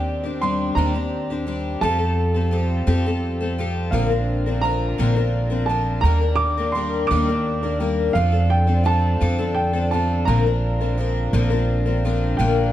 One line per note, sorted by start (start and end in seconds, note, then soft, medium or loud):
0.00 0.72 D#2 medium
0.00 1.79 D#3 medium
0.00 0.25 C4 soft
0.00 6.01 C4 medium
0.00 0.24 D4 soft
0.00 1.80 D4 medium
0.00 0.22 G4 soft
0.00 1.80 G4 medium
0.00 0.43 G5 medium
0.24 0.42 C4 soft
0.24 0.42 D4 soft
0.24 0.41 G4 soft
0.42 0.77 G3 medium
0.42 0.76 C4 medium
0.42 0.77 D4 medium
0.42 0.77 G4 medium
0.42 0.78 C6 medium
0.75 1.78 D#2 medium
0.75 0.95 D#3 medium
0.75 0.95 G3 medium
0.75 0.95 C4 medium
0.75 0.94 D4 medium
0.75 0.93 G4 medium
0.75 1.42 A#5 medium
0.94 1.30 C4 soft
0.94 1.30 D4 soft
0.94 1.29 G4 soft
1.30 1.46 C4 soft
1.30 1.47 D4 soft
1.30 1.47 G4 soft
1.47 1.82 G3 medium
1.47 1.82 C4 medium
1.47 1.83 D4 medium
1.47 1.82 G4 medium
1.81 2.83 F2 medium
1.81 2.00 F3 medium
1.81 3.92 G3 medium
1.81 1.99 C4 medium
1.81 3.92 F4 medium
1.81 1.98 G4 medium
1.81 3.92 A4 medium
1.81 1.97 A4 medium
1.81 3.54 A5 loud
1.98 2.35 C4 soft
1.98 2.35 G4 soft
1.98 2.33 A4 soft
2.34 2.51 C4 soft
2.34 2.51 G4 soft
2.34 2.52 A4 soft
2.51 2.85 F3 medium
2.51 2.86 C4 medium
2.51 2.87 G4 medium
2.51 2.87 A4 medium
2.87 3.89 F2 medium
2.87 3.05 F3 medium
2.87 3.05 C4 medium
2.87 3.05 G4 medium
2.87 3.05 A4 medium
3.06 3.42 C4 soft
3.06 3.41 G4 medium
3.06 3.39 A4 medium
3.41 3.58 C4 soft
3.41 3.59 G4 soft
3.41 3.58 A4 soft
3.58 3.92 F3 medium
3.58 3.92 C4 medium
3.58 3.94 G4 medium
3.58 3.94 A4 medium
3.91 4.94 A#1 medium
3.91 4.11 A#2 medium
3.91 4.11 D3 medium
3.91 4.11 F3 medium
3.91 4.11 C4 medium
3.91 4.10 D4 medium
3.91 4.09 A#4 medium
3.91 4.65 F5 medium
3.96 6.04 D3 medium
3.96 6.04 F4 medium
3.96 6.04 A#4 medium
4.10 4.47 F3 soft
4.10 4.47 C4 soft
4.10 4.46 D4 soft
4.10 4.45 A#4 soft
4.46 4.61 F3 soft
4.46 4.62 C4 soft
4.46 4.63 D4 soft
4.46 4.64 A#4 soft
4.61 4.98 F3 medium
4.61 4.99 C4 medium
4.61 4.99 D4 medium
4.61 4.99 A#4 medium
4.61 5.29 A#5 medium
4.98 6.01 A#1 medium
4.98 5.16 A#2 medium
4.98 5.17 D3 medium
4.98 5.17 F3 medium
4.98 5.16 C4 medium
4.98 5.16 D4 medium
4.98 5.15 A#4 medium
5.16 5.51 F3 soft
5.16 5.51 C4 soft
5.16 5.50 D4 soft
5.16 5.49 A#4 medium
5.50 5.68 F3 soft
5.50 5.68 C4 soft
5.50 5.69 D4 soft
5.50 5.68 A#4 soft
5.66 6.04 F3 medium
5.66 6.05 C4 medium
5.66 6.04 D4 medium
5.66 6.04 A5 medium
5.71 6.04 A#4 medium
6.01 7.06 D#2 medium
6.01 6.22 D#3 medium
6.01 6.22 G3 medium
6.01 8.14 D4 medium
6.01 8.14 G4 medium
6.01 6.39 A#5 medium
6.05 8.14 D#3 medium
6.05 6.22 A#3 medium
6.05 6.21 D4 medium
6.05 8.14 A#4 medium
6.05 6.20 A#4 medium
6.21 6.58 A#3 soft
6.21 6.58 D4 soft
6.21 6.56 A#4 soft
6.36 6.74 D6 medium
6.58 6.74 A#3 soft
6.58 6.75 D4 soft
6.58 6.75 A#4 soft
6.72 7.10 G3 medium
6.72 7.10 A#3 medium
6.72 7.10 D4 medium
6.72 7.10 C6 medium
6.77 7.11 A#4 medium
7.07 8.12 D#2 medium
7.07 7.28 D#3 medium
7.07 7.28 G3 medium
7.07 7.84 D6 medium
7.11 7.29 A#3 medium
7.11 7.28 D4 medium
7.11 7.27 A#4 medium
7.29 7.64 A#3 soft
7.29 7.63 D4 soft
7.29 7.62 A#4 soft
7.63 7.79 A#3 soft
7.63 7.80 D4 soft
7.63 7.81 A#4 soft
7.80 8.14 G3 medium
7.80 8.15 A#3 medium
7.80 8.14 D4 medium
7.80 8.16 A#4 medium
8.13 9.17 F2 medium
8.13 12.35 D3 medium
8.13 8.33 F3 medium
8.13 8.33 C4 medium
8.13 10.25 C4 medium
8.13 8.33 D4 medium
8.13 12.35 F4 medium
8.13 10.26 A4 medium
8.13 8.31 A4 medium
8.13 8.51 F5 medium
8.32 8.68 C4 soft
8.32 8.67 D4 soft
8.32 8.66 A4 medium
8.50 8.87 G5 medium
8.67 8.84 C4 soft
8.67 8.84 D4 soft
8.67 8.84 A4 medium
8.84 9.19 F3 medium
8.84 9.20 C4 medium
8.84 9.20 D4 medium
8.84 9.21 A4 medium
8.84 9.59 A5 medium
9.21 10.23 F2 medium
9.21 9.39 F3 medium
9.21 9.39 C4 medium
9.21 9.38 D4 medium
9.21 9.37 A4 medium
9.39 9.74 C4 soft
9.39 9.74 D4 soft
9.39 9.72 A4 medium
9.54 9.92 G5 medium
9.73 9.92 C4 soft
9.73 9.92 D4 soft
9.73 9.91 A4 soft
9.91 10.26 F3 medium
9.91 10.27 C4 medium
9.91 10.27 D4 medium
9.91 10.28 A4 medium
9.91 10.24 A5 medium
10.25 11.29 A#1 medium
10.25 10.45 A#2 medium
10.25 10.45 D3 medium
10.25 10.45 F3 medium
10.25 12.37 C4 medium
10.25 10.45 C4 medium
10.25 10.45 D4 medium
10.25 12.37 A#4 medium
10.25 10.45 A#4 medium
10.25 11.63 A#5 medium
10.46 10.82 F3 soft
10.46 10.81 C4 soft
10.46 10.80 D4 soft
10.46 10.79 A#4 soft
10.81 10.96 F3 soft
10.81 10.97 C4 soft
10.81 10.98 D4 soft
10.81 10.98 A#4 soft
10.98 11.33 F3 medium
10.98 11.33 C4 medium
10.98 11.33 D4 medium
10.98 11.33 A#4 medium
11.33 12.35 A#1 medium
11.33 11.51 A#2 medium
11.33 11.51 D3 medium
11.33 11.51 F3 medium
11.33 11.51 C4 medium
11.33 11.51 D4 medium
11.33 11.49 A#4 medium
11.50 11.87 F3 soft
11.50 11.86 C4 soft
11.50 11.86 D4 medium
11.50 11.85 A#4 medium
11.86 12.04 F3 soft
11.86 12.04 C4 soft
11.86 12.04 D4 soft
11.86 12.04 A#4 soft
12.05 12.38 F3 medium
12.05 12.40 C4 medium
12.05 12.39 D4 medium
12.05 12.39 A#4 medium
12.37 12.72 A#1 medium
12.37 12.72 A#2 medium
12.37 12.72 D3 medium
12.37 12.72 F3 medium
12.37 12.72 A#3 medium
12.37 12.72 D4 medium
12.37 12.72 F4 medium
12.37 12.72 A#4 medium
12.37 12.72 G5 medium